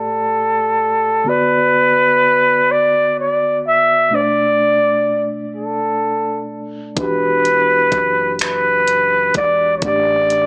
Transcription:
0.00 1.21 A2 medium
0.00 1.21 A3 medium
0.00 1.22 G4 soft
0.00 1.30 A4 medium
0.00 1.23 D5 medium
1.24 4.06 D3 medium
1.24 4.07 B3 medium
1.24 4.08 F#4 medium
1.29 2.73 B4 loud
1.29 4.09 D5 medium
2.72 3.17 D5 loud
3.19 3.62 D5 medium
3.67 4.16 E5 loud
4.10 6.92 B2 medium
4.10 6.93 A3 medium
4.10 6.94 D4 medium
4.14 4.19 C5 soft
4.14 5.29 D5 loud
4.21 6.98 D5 medium
5.56 6.46 A4 medium
6.96 7.94 E1 medium
6.96 9.78 E3 medium
6.96 9.79 D4 soft
6.96 9.80 F#4 soft
6.96 8.37 B4 loud
6.96 kick medium
6.96 closed hi-hat medium
7.01 9.80 G4 medium
7.45 closed hi-hat soft
7.92 9.31 F#1 medium
7.92 kick medium
7.92 closed hi-hat soft
8.39 9.32 B4 medium
8.39 finger snap loud
8.39 closed hi-hat medium
8.88 closed hi-hat soft
9.34 9.84 E1 medium
9.34 9.73 D5 loud
9.34 kick medium
9.34 closed hi-hat soft
9.77 9.85 C#5 medium
9.81 10.46 A1 medium
9.81 10.46 A2 medium
9.81 10.46 A3 soft
9.81 10.46 D4 medium
9.81 10.46 D5 loud
9.81 kick medium
9.81 closed hi-hat medium
9.87 10.46 G4 medium
10.30 closed hi-hat soft

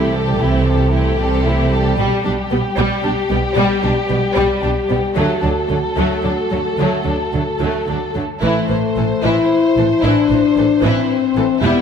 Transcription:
0.00 0.31 C2 medium
0.00 0.30 C3 soft
0.00 1.94 E3 soft
0.00 0.12 A3 soft
0.00 0.12 E4 soft
0.00 0.12 G4 soft
0.00 1.98 A4 soft
0.14 0.40 G3 soft
0.14 0.41 G4 soft
0.14 0.40 A4 soft
0.40 1.10 C2 soft
0.40 1.10 C3 medium
0.40 0.67 A3 soft
0.40 0.67 E4 soft
0.40 0.67 G4 soft
0.66 0.93 G3 soft
0.66 0.93 G4 soft
0.66 0.92 A4 soft
0.93 1.18 A3 soft
0.93 1.18 E4 soft
0.93 1.17 G4 soft
1.19 1.89 C2 medium
1.19 1.89 C3 medium
1.19 1.46 G3 soft
1.19 1.46 G4 soft
1.19 1.46 A4 soft
1.45 1.73 A3 soft
1.45 1.72 E4 soft
1.45 1.72 G4 soft
1.72 1.97 G3 soft
1.72 1.99 G4 soft
1.72 1.99 A4 soft
1.98 2.06 B1 medium
1.98 2.06 B2 medium
1.98 2.23 G3 medium
1.98 5.17 G3 medium
1.98 2.23 G3 medium
1.98 5.13 G4 medium
1.98 5.14 G4 medium
2.25 2.33 B1 soft
2.25 2.33 B2 soft
2.25 2.34 G3 soft
2.25 2.33 D4 soft
2.51 2.59 B1 soft
2.51 2.59 B2 soft
2.51 2.59 G3 soft
2.51 2.60 B3 soft
2.77 2.86 B1 medium
2.77 2.85 B2 medium
2.77 3.02 G3 medium
2.77 3.03 G3 medium
3.04 3.12 B1 soft
3.04 3.12 B2 soft
3.04 3.12 G3 soft
3.04 3.12 D4 medium
3.30 3.38 B1 soft
3.30 3.38 B2 soft
3.30 3.38 G3 medium
3.30 3.39 B3 soft
3.56 3.64 B1 medium
3.56 3.65 B2 medium
3.56 3.81 G3 medium
3.56 3.82 G3 medium
3.84 3.92 B1 soft
3.84 3.92 B2 soft
3.84 3.92 G3 soft
3.84 3.92 D4 soft
4.09 4.19 B1 soft
4.09 4.17 B2 soft
4.09 4.18 G3 soft
4.09 4.17 B3 soft
4.35 4.44 B1 medium
4.35 4.44 B2 medium
4.35 4.61 G3 medium
4.35 4.62 G3 medium
4.62 4.71 B1 soft
4.62 4.72 B2 soft
4.62 4.71 G3 soft
4.62 4.70 D4 soft
4.89 4.98 B1 soft
4.89 4.98 B2 soft
4.89 4.98 G3 soft
4.89 4.97 B3 soft
5.16 5.24 D2 medium
5.16 5.24 D3 medium
5.16 5.41 F#3 medium
5.16 5.41 A3 medium
5.16 8.11 A3 medium
5.16 8.15 F#4 medium
5.16 8.17 A4 soft
5.42 5.52 D2 soft
5.42 5.51 D3 soft
5.42 5.52 F#3 soft
5.42 5.50 D4 soft
5.70 5.78 D2 soft
5.70 5.78 D3 soft
5.70 5.79 F#3 soft
5.70 5.78 A3 soft
5.97 6.05 D2 medium
5.97 6.06 D3 medium
5.97 6.22 F#3 medium
5.97 6.23 A3 soft
6.24 6.32 D2 soft
6.24 6.33 D3 soft
6.24 6.32 F#3 soft
6.24 6.33 D4 soft
6.51 6.59 D2 soft
6.51 6.60 D3 soft
6.51 6.59 F#3 soft
6.51 6.61 A3 soft
6.78 6.87 D2 soft
6.78 6.86 D3 soft
6.78 7.04 F#3 soft
6.78 7.05 A3 soft
7.05 7.14 D2 soft
7.05 7.13 D3 soft
7.05 7.13 F#3 soft
7.05 7.16 D4 soft
7.33 7.41 D2 soft
7.33 7.41 D3 soft
7.33 7.41 F#3 soft
7.33 7.42 A3 soft
7.60 7.69 D2 soft
7.60 7.68 D3 soft
7.60 7.85 F#3 soft
7.60 7.87 A3 soft
7.87 7.97 D2 soft
7.87 7.95 D3 soft
7.87 7.96 F#3 soft
7.87 7.97 D4 soft
8.15 8.24 D2 soft
8.15 8.23 D3 soft
8.15 8.23 F#3 soft
8.15 8.25 A3 soft
8.42 8.51 A1 soft
8.42 8.50 A2 medium
8.42 8.67 E3 medium
8.42 9.20 A3 medium
8.42 8.68 E4 soft
8.42 11.59 C5 soft
8.69 8.78 A1 soft
8.69 8.77 A2 soft
8.69 8.77 E3 soft
8.69 8.79 C5 soft
8.96 9.05 A1 soft
8.96 9.05 A2 soft
8.96 9.04 E3 soft
8.96 9.06 A4 soft
9.23 9.32 A1 medium
9.23 9.32 A2 medium
9.23 9.49 E3 soft
9.23 10.02 E4 medium
9.23 9.49 E4 soft
9.77 9.86 A1 soft
9.77 9.87 A2 soft
9.77 9.86 E3 soft
9.77 9.85 A4 soft
10.04 10.13 A1 medium
10.04 10.12 A2 medium
10.04 10.29 E3 soft
10.04 10.83 D4 medium
10.04 10.28 E4 medium
10.30 10.38 A1 soft
10.30 10.38 A2 soft
10.30 10.39 E3 soft
10.30 10.39 C5 soft
10.57 10.65 A1 soft
10.57 10.65 A2 soft
10.57 10.65 E3 soft
10.57 10.66 A4 soft
10.83 10.91 A1 medium
10.83 10.91 A2 medium
10.83 11.08 E3 medium
10.83 11.62 C4 medium
10.83 11.08 E4 medium
11.36 11.44 A1 soft
11.36 11.45 A2 soft
11.36 11.44 E3 medium
11.36 11.45 A4 soft
11.62 11.71 E1 medium
11.62 11.71 E2 medium
11.62 11.81 G3 medium
11.62 11.81 B3 medium
11.62 11.81 E4 medium
11.62 11.81 E5 medium

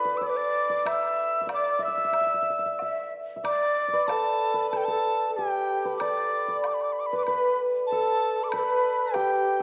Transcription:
0.00 0.49 D4 medium
0.00 1.46 G4 medium
0.00 1.73 A4 medium
0.00 0.25 B4 medium
0.00 0.21 D5 medium
0.00 0.19 B5 medium
0.05 2.78 B4 medium
0.17 0.69 D5 medium
0.17 0.28 E6 medium
0.23 0.31 D5 medium
0.23 0.88 D6 medium
0.30 0.39 B4 medium
0.37 0.89 D5 medium
0.70 1.46 D5 medium
0.85 1.41 E5 medium
0.85 1.50 E5 medium
0.85 high woodblock medium
0.91 1.48 E6 loud
1.41 1.78 E5 medium
1.47 3.43 D5 medium
1.47 high woodblock medium
1.47 low woodblock soft
1.52 1.85 D5 medium
1.52 1.82 D6 medium
1.79 1.87 E5 medium
1.83 2.52 E5 medium
1.83 3.09 E6 loud
1.88 1.97 E5 soft
1.97 2.04 E5 medium
2.04 2.12 E5 medium
2.12 2.21 E5 medium
2.12 high woodblock soft
2.21 2.26 E5 soft
2.27 2.34 E5 soft
2.34 2.42 E5 soft
2.42 2.50 E5 medium
2.50 2.59 E5 soft
2.59 2.65 E5 medium
2.66 2.82 E5 medium
2.79 3.10 E5 medium
2.79 3.36 E5 medium
2.79 low woodblock soft
3.36 5.66 E5 medium
3.44 3.88 D5 medium
3.44 4.12 D5 medium
3.44 4.09 D6 medium
3.44 high woodblock medium
3.88 6.01 D5 soft
3.93 4.53 B4 medium
4.07 4.72 A4 medium
4.07 4.74 A4 medium
4.07 4.70 A5 medium
4.07 high woodblock soft
4.07 low woodblock soft
4.54 5.85 B4 medium
4.71 4.87 A4 medium
4.71 4.78 A5 medium
4.71 high woodblock soft
4.76 4.87 A4 medium
4.76 4.86 G5 medium
4.85 7.80 A4 medium
4.85 5.34 A5 medium
4.89 5.31 A4 medium
5.31 5.38 A4 medium
5.35 6.02 G4 medium
5.35 8.52 G4 medium
5.35 5.95 G5 medium
5.85 7.12 B4 medium
5.97 6.64 D5 medium
5.97 6.58 D6 medium
5.97 high woodblock medium
6.01 6.48 D5 medium
6.48 8.94 D5 medium
6.62 6.68 B5 medium
6.62 high woodblock soft
6.62 low woodblock soft
6.67 6.76 D6 medium
6.74 6.83 B5 medium
6.82 6.94 D6 medium
6.92 7.01 B5 medium
7.00 7.08 D6 medium
7.06 7.17 B5 medium
7.12 7.26 B4 medium
7.12 7.27 B4 medium
7.18 7.25 D6 medium
7.23 7.61 B4 medium
7.23 7.61 B5 medium
7.23 high woodblock soft
7.28 8.53 B4 medium
7.87 8.48 A4 medium
7.87 8.45 A5 medium
7.92 9.60 A4 medium
8.44 8.51 D6 medium
8.49 8.60 B4 medium
8.49 9.15 B5 medium
8.49 high woodblock medium
8.53 9.63 B4 medium
8.59 8.65 A4 medium
8.64 9.16 B4 medium
9.13 9.63 G4 medium
9.13 9.63 G5 medium
9.13 high woodblock soft
9.13 low woodblock soft

